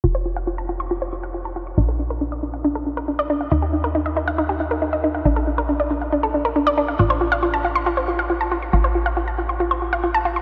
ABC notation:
X:1
M:4/4
L:1/16
Q:1/4=138
K:F
V:1 name="Synth arpeggio sound"
F c F f F a F c' F c F f F a F c' | D A D B D d D f D A D B D d D f | _E G E B E _e E f E G E B E e E f | D A D B D d D f D A D B D d D f |
F c F f F a F c' F c F f F a F c' | F c F f F a F c' F c F f F a F c' |]
V:2 name="Analog synth bass" clef=bass
F,,,16 | B,,,16 | _E,,16 | B,,,16 |
A,,,16 | A,,,16 |]